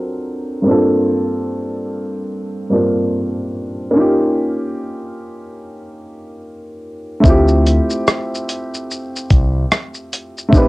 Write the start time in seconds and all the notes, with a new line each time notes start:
Already playing: F#3 C4 D4 F4 A4 A#4
0.62 G2 A#3 C4
0.67 D4 F4 A4
2.70 G2 A#3 C4 D4 F4
2.74 A#4
3.91 A#3 C#4
3.96 D#4 F4
4.00 G4
7.20 A3 C4, kick
7.24 D2 E4 F4, shaker
7.29 G4
7.48 shaker
7.66 closed hi-hat, shaker
7.90 shaker
8.08 cross-stick, shaker
8.35 shaker
8.49 closed hi-hat, shaker
8.74 shaker
8.91 shaker
9.16 shaker
9.30 C2, kick, closed hi-hat, shaker
9.72 cross-stick, shaker
9.94 shaker
10.13 closed hi-hat, shaker
10.38 shaker
10.49 A3 C4
10.53 A1 D#4 G4, kick, shaker
10.57 B4